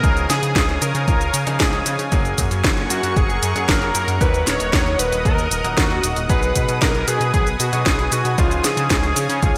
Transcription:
Already playing: A#4 G#5 D#6
0.03 C#2 F3 C#4 D#4 G#4 C#5 F5, kick, closed hi-hat, cabasa
0.17 closed hi-hat, cabasa
0.29 C#3 G#4, snare, closed hi-hat, cabasa
0.43 C#3, closed hi-hat, cabasa
0.56 C#2, kick, snare, closed hi-hat, cabasa
0.69 closed hi-hat
0.82 C#3 A#4, closed hi-hat, cabasa
0.95 C#3, closed hi-hat, cabasa
1.08 C#2 A#4, kick, closed hi-hat, cabasa
1.21 closed hi-hat, cabasa
1.34 C#3, closed hi-hat, cabasa
1.47 C#3 F3 C#4 D#4 G#4, closed hi-hat, cabasa
1.60 C#2 G#4, kick, snare, closed hi-hat, cabasa
1.73 closed hi-hat
1.86 C#3, closed hi-hat, cabasa
1.99 C#3, closed hi-hat, cabasa
2.12 F#1 F#3 A#3 C#4 G#4 A#4 F#5 C#6, kick, closed hi-hat, cabasa
2.25 closed hi-hat, cabasa
2.38 F#2, kick, closed hi-hat, cabasa
2.51 F#2, closed hi-hat, cabasa
2.64 F#1, kick, snare, closed hi-hat, cabasa
2.77 closed hi-hat
2.90 F#2 F#4, closed hi-hat, cabasa
3.03 F#2, closed hi-hat, cabasa
3.16 F#1 G#4, kick, closed hi-hat, cabasa
3.30 closed hi-hat, cabasa
3.42 F#2 G#4, closed hi-hat, cabasa
3.55 F#2 F#3 A#3 C#4 G#4, closed hi-hat, cabasa
3.69 F#1 A#4, kick, snare, closed hi-hat, cabasa
3.82 closed hi-hat
3.94 F#2 A#4, closed hi-hat, cabasa
4.08 F#2, closed hi-hat, cabasa
4.21 D#2 F#3 A#3 D#4 A#4 B4 D#5 D#6, kick, closed hi-hat, cabasa
4.34 closed hi-hat, cabasa
4.47 D#1 C#5, snare, closed hi-hat, cabasa
4.60 D#1, closed hi-hat, cabasa
4.73 D#2, kick, snare, closed hi-hat, cabasa
4.86 closed hi-hat
4.99 D#1 B4, closed hi-hat, cabasa
5.12 D#1, closed hi-hat, cabasa
5.25 D#2 A#4, kick, closed hi-hat, cabasa
5.38 closed hi-hat, cabasa
5.51 D#1, closed hi-hat, cabasa
5.64 D#1 F#3 A#3 D#4 A#4, closed hi-hat, cabasa
5.77 D#2 F#4, kick, snare, closed hi-hat, cabasa
5.91 closed hi-hat
6.03 D#1, closed hi-hat, cabasa
6.16 D#1, closed hi-hat, cabasa
6.29 B1 F#3 B3 D#4 G#4 B4 G#5, kick, closed hi-hat, cabasa
6.43 closed hi-hat, cabasa
6.56 B2, kick, closed hi-hat, cabasa
6.69 B2, closed hi-hat, cabasa
6.82 B1 A#4, kick, snare, closed hi-hat, cabasa
6.95 closed hi-hat
7.08 B2 G#4, closed hi-hat, cabasa
7.20 B2, closed hi-hat, cabasa
7.34 B1 G#4, kick, closed hi-hat, cabasa
7.47 closed hi-hat, cabasa
7.60 B2 F#4, closed hi-hat, cabasa
7.73 B2 F#3 B3 D#4 G#4, closed hi-hat, cabasa
7.86 B1 G#4, kick, snare, closed hi-hat, cabasa
7.99 closed hi-hat
8.12 B2 F#4, closed hi-hat, cabasa
8.25 B2, closed hi-hat, cabasa
8.38 C#2 F3 C#4 D#4 F4 G#4 C#5 F5, kick, closed hi-hat, cabasa
8.51 closed hi-hat, cabasa
8.64 C#3 G#4, snare, closed hi-hat, cabasa
8.77 C#3, closed hi-hat, cabasa
8.90 C#2, kick, snare, closed hi-hat, cabasa
9.03 closed hi-hat
9.16 C#3, closed hi-hat, cabasa
9.29 C#3, closed hi-hat, cabasa
9.43 C#2, kick, closed hi-hat, cabasa

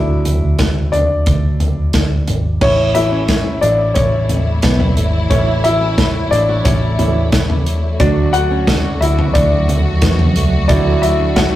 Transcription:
Already playing: D2 F#3 A3 D4 E4 E5
0.25 closed hi-hat, floor tom
0.43 D2
0.59 kick, snare, closed hi-hat
0.92 D4 D5, closed hi-hat, floor tom
1.26 D2, kick, closed hi-hat
1.60 closed hi-hat, floor tom
1.93 D2, kick, snare, closed hi-hat
2.27 G#1, closed hi-hat, floor tom
2.61 A1 E3 A3 C#4 E4 C#5, kick, crash
2.94 E3 A3 E4 E5, closed hi-hat
3.12 C#4
3.28 kick, snare, closed hi-hat
3.61 A1 D4 D5, closed hi-hat
3.94 A1 C#4 C#5, kick, closed hi-hat
4.29 closed hi-hat, floor tom
4.62 B1 B3, kick, snare, closed hi-hat
4.80 floor tom
4.96 G#1 A3, closed hi-hat
5.30 A1 E3 A3 C#4 E4 C#5, kick, closed hi-hat
5.64 E4 E5, closed hi-hat
5.81 C#4
5.98 kick, snare, closed hi-hat
6.15 E4
6.31 A1 D4 D5, closed hi-hat
6.49 F#4
6.64 A1 C#4 C#5, kick, closed hi-hat
6.99 E3 A3 C#4 E4, closed hi-hat, floor tom
7.32 kick, snare, closed hi-hat
7.50 floor tom
7.67 closed hi-hat
8.00 D2 F#3 A3 D4 F#4 D5, kick, closed hi-hat
8.33 F#4 F#5, closed hi-hat
8.51 C#4
8.67 kick, snare, closed hi-hat
9.01 D2 E4 E5, closed hi-hat
9.19 floor tom
9.33 D2 D4 D5, kick, closed hi-hat
9.69 closed hi-hat, floor tom
10.02 E2 B3, kick, snare, closed hi-hat
10.19 floor tom
10.36 C#2 A3, closed hi-hat
10.68 D2 F#3 A3 D4 E4 D5, kick, closed hi-hat
11.02 E4 E5, closed hi-hat
11.20 D4
11.36 F#4 F#5, kick, snare, closed hi-hat

